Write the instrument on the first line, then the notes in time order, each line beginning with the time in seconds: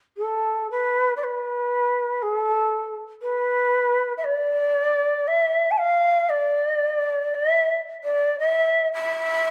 shakuhachi
0.17 A4
0.71 B4
1.16 D5
1.24 B4
2.22 A4
3.22 B4
4.17 E5
4.24 D5
5.27 E5
5.71 A5
5.78 F5
6.29 D5
7.34 E5
8.04 D5
8.39 E5
8.93 E5